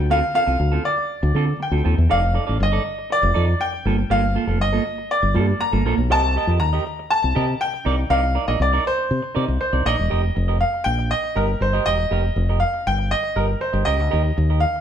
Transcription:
Already playing: D2 G5
0.10 C4 F4 A4 F5
0.22 muted clean electric guitar stroke
0.34 C4 F4 A4 F5
0.46 C2 C4 F4 A4
0.60 D2, muted clean electric guitar stroke
0.72 C4 F4 A4
0.85 D5, muted clean electric guitar stroke
0.98 muted clean electric guitar stroke
1.23 D2, muted clean electric guitar stroke
1.35 D3 C4 F4 A4
1.48 muted clean electric guitar stroke
1.60 G5, muted clean electric guitar stroke
1.71 D2 C4 F4 A4
1.84 D#2 C4 F4 A4
1.97 E2, muted clean electric guitar stroke
2.09 F1 D#4 A4 D5 F5
2.22 muted clean electric guitar stroke
2.34 D#4 A4 D5
2.47 A1 D#4 A4 D5
2.59 G1 D#5, muted clean electric guitar stroke
2.72 D#4 A4 D5
2.85 muted clean electric guitar stroke
2.98 muted clean electric guitar stroke
3.10 D5, muted clean electric guitar stroke
3.22 F1, muted clean electric guitar stroke
3.34 F2 D#4 A4 D5
3.48 muted clean electric guitar stroke
3.60 G5, muted clean electric guitar stroke
3.73 muted clean electric guitar stroke
3.85 G1 A#3 F4 A4
3.99 muted clean electric guitar stroke
4.10 G1 A#3 F4 A4 F5
4.23 muted clean electric guitar stroke
4.35 A#3 F4 A4
4.47 F1 A#3 F4 A4
4.60 G1 D#5, muted clean electric guitar stroke
4.73 A#3 F4 A4
4.85 muted clean electric guitar stroke
4.98 muted clean electric guitar stroke
5.11 D5
5.22 G1, muted clean electric guitar stroke
5.34 G2 A#3 F4 A4
5.61 A#5, muted clean electric guitar stroke
5.72 G1 A#3 F4 A4
5.85 A#1 A#3 F4 A4
5.97 B1, muted clean electric guitar stroke
6.10 C2 G4 A#4 D#5 A5
6.24 muted clean electric guitar stroke
6.36 G4 A#4 D#5
6.47 F2 G4 A#4 D#5
6.60 D#2 A#5, muted clean electric guitar stroke
6.73 G4 A#4 D#5
6.87 muted clean electric guitar stroke
6.99 muted clean electric guitar stroke
7.10 A5, muted clean electric guitar stroke
7.22 C2, muted clean electric guitar stroke
7.35 C3 G4 A#4 D#5
7.48 muted clean electric guitar stroke
7.61 G5, muted clean electric guitar stroke
7.73 muted clean electric guitar stroke
7.85 C2 D#4 A#4 D5
7.98 muted clean electric guitar stroke
8.10 C2 D#4 A#4 D5 F5
8.23 muted clean electric guitar stroke
8.35 D#4 A#4 D5
8.48 A#1 D#4 A#4 D5 D#5
8.60 C2 D5, muted clean electric guitar stroke
8.73 D#4 A#4 D5
8.86 C5, muted clean electric guitar stroke
8.98 muted clean electric guitar stroke
9.11 C3
9.22 muted clean electric guitar stroke
9.35 C3 D#4 A#4 D5
9.47 C2, muted clean electric guitar stroke
9.61 C5, muted clean electric guitar stroke
9.73 C2 D#4 A#4 D5
9.86 A#1 D#4 A#4 D5 D#5
9.99 E1, muted clean electric guitar stroke
10.10 F1 G4 A#4 D#5
10.24 muted clean electric guitar stroke
10.35 F1, muted clean electric guitar stroke
10.48 G4 A#4 D#5
10.61 F5
10.73 muted clean electric guitar stroke
10.84 A#1 G5
10.99 muted clean electric guitar stroke
11.10 D#5, muted clean electric guitar stroke
11.24 muted clean electric guitar stroke
11.36 G1 G4 A#4 D#5
11.48 muted clean electric guitar stroke
11.61 G1 C5, muted clean electric guitar stroke
11.73 G4 A#4 D#5
11.86 E1 G4 A#4 D#5
11.99 muted clean electric guitar stroke
12.11 F1 G4 A#4 F5
12.24 muted clean electric guitar stroke
12.36 F1, muted clean electric guitar stroke
12.49 G4 A#4 D#5
12.60 F5, muted clean electric guitar stroke
12.74 muted clean electric guitar stroke
12.87 G1 G5
12.98 muted clean electric guitar stroke
13.10 D#5, muted clean electric guitar stroke
13.23 muted clean electric guitar stroke
13.36 G1 G4 A#4 D#5
13.48 muted clean electric guitar stroke
13.61 C5, muted clean electric guitar stroke
13.73 G1 G4 A#4 D#5
13.85 C#2 G4 A#4 D#5
13.99 D2, muted clean electric guitar stroke
14.10 D#2 G4 A#4 D#5
14.24 muted clean electric guitar stroke
14.37 D#2, muted clean electric guitar stroke
14.50 G4 A#4 D#5
14.60 F5
14.76 muted clean electric guitar stroke

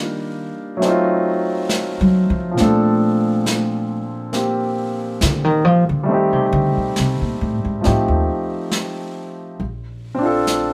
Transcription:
Already playing: D#3 G3 A#3 D4 D#4 F4
0.77 F#3 A3
0.82 C4 D#4, brush sweep, snare
0.88 F4
1.69 snare
2.01 F#3
2.30 F3
2.51 A#2 F3
2.57 A3 C4 D4, brush sweep, snare
2.63 A4
3.46 snare
4.32 A#3 C4 G4, brush sweep, snare
5.21 D3, snare
5.44 D#3
5.65 F3
5.89 D3
6.03 G3 A3
6.08 D#3 C4 D#4, brush sweep
6.14 G4
6.33 C3
6.53 D3
6.77 B2
6.96 C3, snare
7.21 A#2
7.41 A2
7.65 G#2
7.81 F3 A3 C4 D#4, brush sweep, snare
7.86 A2 G4
8.08 D#2
8.71 snare
9.59 A#1, brush sweep
10.15 C4 D4
10.22 F4 A4
10.47 snare, hi-hat pedal

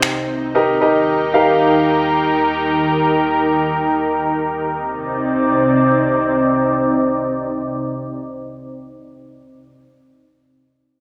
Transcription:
Already playing: C3 C4 D#4 G4 C5 D#5, downlifter
0.02 finger snap
0.55 D#3 D#4 G4 A#4 D#5
0.81 D#4 G4 A#4 D#5
1.34 D#4 G4 A#4 F5
4.76 C3 C4 D#4 D5

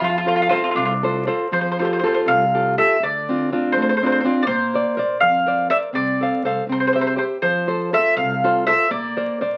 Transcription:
0.00 F2 F3 F4
0.10 F4
0.18 F4
0.26 F4 A4 C5
0.36 F4
0.42 F4
0.49 F2 C4 F4 A4 C5
0.55 F4
0.64 F4
0.71 C3 F4
0.75 C2 D4 F4
0.85 F4
1.03 F4 A4 C5
1.27 C4 F4 A4 C5
1.51 F2 F3 C5
1.61 C5
1.72 C5
1.79 F4 G4 A4 C5
1.85 C5
1.93 C5
1.99 F2 C5
2.03 F4 G4 A4 C5
2.14 C5
2.26 C2 C3 F5
2.55 F4 G4 A4
2.78 F4 G4 A4 E5
3.00 D2 D3 D5
3.29 C4 D4 F4
3.50 D2 C4 D4 F4
3.72 A1 C5
3.77 A3
3.82 C5
3.89 C5
3.97 C5
4.03 C4 D4 F4 C5
4.12 C5
4.20 C5
4.25 C4 D4 F4
4.43 A#1 D5
4.47 A#3 C5
4.74 A#4 C5 D5
4.97 A#1 A#4 C5 D5
5.20 F2 F3 F5
5.46 A#4 C5 D5
5.70 A#4 C5 D5 E5
5.93 C2 C4 D5
6.21 A4 C5 F5
6.43 C2 A4 C5 F5
6.67 C2 C4
6.72 C5
6.80 C5
6.87 C5
6.93 G4 C5 E5
7.01 C5
7.07 C5
7.16 G4 C5 E5
7.42 F2 F3 C5
7.67 F4 A4 C5
7.93 F2 F4 A4 C5 E5
8.16 C2 C3 F5
8.44 F4 A4 C5
8.67 F4 A4 C5 E5
8.91 A#1 A#3 D5
9.17 A#4 C5 D5
9.41 A#1 A#4 C5 D5

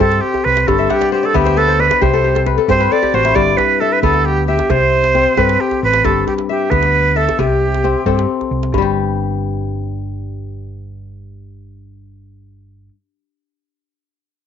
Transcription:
Already playing: C3 E5
0.00 G2 C4 A4, djembe bass
0.12 djembe slap
0.21 G4
0.34 djembe slap, djembe tone
0.44 C2 B4
0.57 B4, djembe slap
0.67 G1 G2 A4, djembe bass
0.79 E5
0.90 G4 F#5, djembe tone
1.01 D5, djembe slap
1.12 G4 C5
1.23 A4 D5
1.34 D2 B3 G4 E5, djembe bass
1.45 C5, djembe slap, djembe tone
1.57 A4 B4
1.68 C5
1.79 B4 D5
1.90 B4, djembe slap, djembe tone
2.01 C2 C3 G4 C5, djembe bass
2.13 A4
2.24 G4
2.35 A4, djembe slap
2.46 B4, djembe slap, djembe tone
2.58 A4
2.68 G2 C4 G4 C5, djembe bass
2.80 B4, djembe slap
2.92 A4 D5
3.02 G4, djembe slap, djembe tone
3.14 A1 F#4 C5
3.25 E4, djembe slap
3.35 G1 G2 D5, djembe bass
3.57 B4, djembe tone
3.80 A4 E5
3.92 B4
4.03 D2 B3 A4, djembe bass
4.14 djembe tone
4.25 G4
4.47 G4 E5
4.59 djembe slap, djembe tone
4.70 C2 C3 C5, djembe bass
5.04 djembe slap
5.15 C4, djembe slap, djembe tone
5.37 G2 C4 A4 B4, djembe bass
5.49 djembe slap
5.61 G4
5.71 djembe slap, djembe tone
5.83 A1 B4
5.93 djembe slap
6.04 G1 G2 A4, djembe slap, djembe bass
6.27 G4, djembe slap, djembe tone
6.38 djembe slap
6.49 G4 E5
6.70 D2 B3 B4, djembe bass
6.83 djembe slap, djembe tone
6.94 djembe slap
7.16 A4 E5, djembe slap
7.29 djembe slap, djembe tone
7.39 C2 C3 G4, djembe bass
7.74 djembe slap
7.84 C4, djembe tone
7.96 djembe slap
8.06 G2 C4 A4, djembe slap, djembe bass
8.19 djembe slap
8.41 djembe slap, djembe tone
8.51 C2, djembe slap
8.63 djembe slap
8.72 G1 G2, djembe bass
8.78 G3 G4

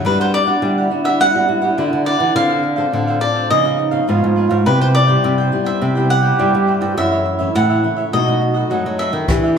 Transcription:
0.05 G3 B3 D4 E4 F#4 G4 B4 F#5
0.20 G4 B4 C5 F#5
0.34 D5, muted cavaquinho stroke
0.46 B3 D4 F#4 G4 B4 F#5
0.62 D3 G3 D4 G4 B4 F#5
0.78 G4 B4 F#5
0.90 B3 D4 F#4
1.04 G4 B4 E5 F#5
1.20 G3 D4 G4 B4 F#5
1.34 B3 D4 F#4 G4 B4 F#5
1.48 B3 D4 F#4, muted cavaquinho stroke
1.61 B3 D4 F#4 G4 B4 F#5
1.77 D3 B3 D4 F#4 G4 B4 F#5
1.93 D3
2.05 D4 G4 B4 D5 F#5
2.19 E3 G4 B4 F#5
2.34 D3 C4 D4 F4 A4 C5 F5
2.49 A4 C5 F5
2.63 muted cavaquinho stroke
2.76 C4 F4 A4 C5 F5
2.92 A2 D3 D4 A4 C5 F5
3.07 A4 C5 F5
3.20 C4 F4 A4 D5
3.34 A4 C5 F5
3.50 C#3 F3 B3 D#4 F4 B4 C#5 D#5 F5
3.65 F3 B3 D#4 B4 C#5 F5
3.78 muted cavaquinho stroke
3.91 F3 B3 D#4 B4 C#5 F5
4.08 G#2 F3 B3 D#4 F4 B4 C#5 F5
4.24 G#2
4.36 F4 B4 C#5 F5
4.49 G#2 B4 C#5 F5
4.65 C3 G3 B3 E4 G4 B4 C5 G5
4.80 B4 C5 G5
4.94 D5, muted cavaquinho stroke
5.07 G3 B3 E4 B4 C5 G5
5.23 G2 C3 E4 B4 C5 G5
5.38 B4 C5 G5
5.52 G3 B3 E4
5.65 B4 C5 E5 G5
5.81 C3 E4 G4 B4 C5 G5
5.95 G3 B3 E4 B4 C5 G5
6.09 F#5, muted cavaquinho stroke
6.22 B4 C5 G5
6.39 G2 G3 B3 E4 B4 C5 G5
6.55 G3
6.67 E4 B4 C5 G5
6.81 G2 B4 C5 G5
6.97 F#2 E3 A3 C#4 E4 F#4 A4 C#5 E5
7.12 A4 C#5 E5
7.25 muted cavaquinho stroke
7.39 E3 A3 C#4 A4 C#5 E5
7.55 A2 C#3 F#4 A4 C#5 E5 F#5
7.70 A4 C#5 E5
7.84 E3 A3 C#4
7.96 A4 C#5 E5
8.12 B2 F#3 A3 D#4 F#4 A4 B4 D#5
8.27 F#3 A3 D#4 A4 B4 D#5
8.41 muted cavaquinho stroke
8.54 A4 B4 D#5
8.70 F#2 F#3 A3 D#4 A4 B4 D#5
8.86 F#3
8.98 D#4 A4 B4 D#5 E5
9.12 D#3 A4 B4 D#5
9.28 E3 B3 D4 G4 B4 E5, kick, cross-stick, closed hi-hat
9.43 G4 B4 E5

